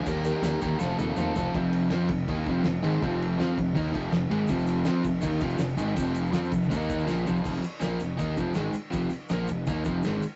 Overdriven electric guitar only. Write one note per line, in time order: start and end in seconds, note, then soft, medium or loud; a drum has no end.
0.06 0.23 D#3 medium
0.06 0.24 G3 loud
0.06 0.24 A#3 loud
0.06 0.24 G4 medium
0.06 0.24 A#4 loud
0.24 0.42 D#3 medium
0.24 0.42 G3 medium
0.24 0.42 A#3 medium
0.24 0.43 G4 medium
0.24 0.44 A#4 loud
0.43 0.59 D#3 medium
0.43 0.60 G3 loud
0.43 0.60 A#3 medium
0.43 0.61 G4 medium
0.43 0.61 A#4 loud
0.60 0.78 D#3 medium
0.60 0.79 G3 loud
0.60 0.78 A#3 medium
0.60 0.79 G4 medium
0.60 0.79 A#4 medium
0.78 0.96 F3 loud
0.78 0.96 A3 loud
0.78 0.97 C4 loud
0.78 0.98 F4 loud
0.78 0.98 A4 loud
0.98 1.15 F3 medium
0.98 1.15 A3 loud
0.98 1.15 C4 loud
0.98 1.16 F4 medium
0.98 1.16 A4 loud
1.16 1.34 F3 medium
1.16 1.35 A3 medium
1.16 1.35 C4 medium
1.16 1.35 F4 medium
1.16 1.36 A4 medium
1.35 1.52 F3 medium
1.35 1.53 A3 loud
1.35 1.53 C4 loud
1.35 1.53 F4 loud
1.35 1.53 A4 loud
1.54 1.90 F2 medium
1.54 1.91 C3 loud
1.54 1.90 F3 loud
1.91 2.09 F3 loud
1.91 2.09 C4 medium
1.91 2.09 F4 loud
2.10 2.24 F2 medium
2.10 2.25 C3 medium
2.29 2.46 D#3 loud
2.29 2.46 A#3 loud
2.29 2.46 D#4 medium
2.48 2.65 F2 medium
2.48 2.65 C3 medium
2.48 2.65 F3 loud
2.66 2.80 F2 medium
2.66 2.80 C3 medium
2.82 3.01 G#2 loud
2.82 3.01 D#3 loud
2.82 3.01 G#3 loud
3.02 3.38 F2 medium
3.02 3.38 C3 loud
3.02 3.37 F3 loud
3.38 3.56 F3 loud
3.38 3.56 C4 loud
3.38 3.57 F4 loud
3.57 3.72 F2 medium
3.57 3.72 C3 medium
3.75 3.92 D#3 medium
3.75 3.93 A#3 medium
3.75 3.94 D#4 loud
3.92 4.11 F2 loud
3.92 4.11 C3 loud
3.92 4.11 F3 loud
4.13 4.27 F2 medium
4.13 4.27 C3 medium
4.30 4.48 G#2 loud
4.30 4.49 D#3 loud
4.30 4.49 G#3 loud
4.49 4.85 F2 medium
4.49 4.85 C3 loud
4.49 4.85 F3 loud
4.86 5.04 F3 medium
4.86 5.04 C4 loud
4.86 5.05 F4 loud
5.03 5.19 F2 medium
5.03 5.19 C3 medium
5.21 5.40 D#3 loud
5.21 5.41 A#3 loud
5.21 5.41 D#4 loud
5.40 5.57 F2 loud
5.40 5.57 C3 loud
5.40 5.60 F3 loud
5.58 5.74 F2 medium
5.58 5.74 C3 medium
5.77 5.96 G#2 medium
5.77 5.96 D#3 medium
5.77 5.96 G#3 loud
5.96 6.33 F2 medium
5.96 6.32 C3 loud
5.96 6.31 F3 loud
6.32 6.51 F3 loud
6.32 6.51 C4 loud
6.32 6.51 F4 loud
6.52 6.67 F2 medium
6.52 6.70 C3 medium
6.70 7.05 D#3 medium
6.70 7.06 A#3 loud
6.70 7.07 D#4 loud
7.06 7.25 A#2 medium
7.06 7.25 F3 loud
7.06 7.26 A#3 loud
7.26 7.42 F2 medium
7.26 7.42 C3 loud
7.26 7.43 F3 loud
7.43 7.61 F2 medium
7.43 7.62 C3 medium
7.43 7.62 F3 medium
7.62 muted overdriven electric guitar stroke medium
7.80 7.99 A#2 medium
7.80 7.99 F3 medium
7.80 8.00 A#3 loud
7.99 8.15 F2 medium
7.99 8.15 C3 medium
8.17 8.36 D#3 medium
8.17 8.36 A#3 medium
8.17 8.36 D#4 medium
8.36 8.54 F2 medium
8.36 8.55 C3 medium
8.36 8.55 F3 loud
8.54 8.72 G#2 medium
8.54 8.74 D#3 medium
8.54 8.74 G#3 loud
8.73 muted overdriven electric guitar stroke medium
8.91 9.09 F2 loud
8.91 9.10 C3 loud
8.91 9.10 F3 loud
9.10 muted overdriven electric guitar stroke medium
9.30 9.48 A#2 medium
9.30 9.49 F3 medium
9.30 9.49 A#3 loud
9.49 9.64 F2 medium
9.49 9.64 C3 medium
9.67 9.85 D#3 medium
9.67 9.86 A#3 loud
9.67 9.86 D#4 loud
9.84 10.03 F2 medium
9.84 10.04 C3 medium
9.84 10.04 F3 loud
10.04 10.21 G#2 medium
10.04 10.22 D#3 medium
10.04 10.23 G#3 loud
10.22 muted overdriven electric guitar stroke medium